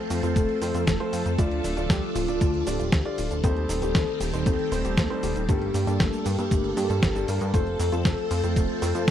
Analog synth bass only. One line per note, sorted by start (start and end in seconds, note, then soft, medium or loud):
0.10 0.22 F2 loud
0.23 0.34 F2 medium
0.36 0.47 F1 medium
0.61 0.73 F2 medium
0.74 0.86 F2 medium
0.87 0.98 F1 medium
1.13 1.24 F2 medium
1.26 1.37 F2 medium
1.39 1.61 D2 loud
1.64 1.75 D1 medium
1.77 1.88 D1 medium
1.90 2.01 D2 medium
2.15 2.27 D1 loud
2.28 2.40 D1 medium
2.41 2.64 D2 medium
2.67 2.78 D1 medium
2.80 2.91 D1 medium
2.92 3.04 D2 loud
3.18 3.29 D1 medium
3.31 3.42 D1 loud
3.44 3.66 D#2 loud
3.69 3.81 D#1 loud
3.82 3.93 D#1 loud
3.95 4.06 D#2 medium
4.21 4.32 D#1 loud
4.33 4.45 D#1 medium
4.46 4.57 D#2 medium
4.72 4.83 D#1 medium
4.85 4.96 D#1 medium
4.97 5.09 D#2 medium
5.23 5.34 D#1 medium
5.36 5.47 D#1 medium
5.49 5.71 G1 loud
5.74 5.86 G2 loud
5.87 5.98 G2 medium
6.00 6.11 G1 medium
6.26 6.37 G2 loud
6.39 6.50 G2 medium
6.51 6.74 G1 medium
6.77 6.88 G2 loud
6.90 7.01 G2 medium
7.03 7.25 G1 medium
7.28 7.40 G2 medium
7.41 7.52 G2 loud
7.54 7.76 F1 loud
7.80 7.91 F2 loud
7.92 8.04 F2 medium
8.05 8.16 F1 medium
8.31 8.42 F2 loud
8.44 8.55 F2 medium
8.56 8.68 F1 medium
8.82 8.93 F2 medium
8.95 9.06 F2 loud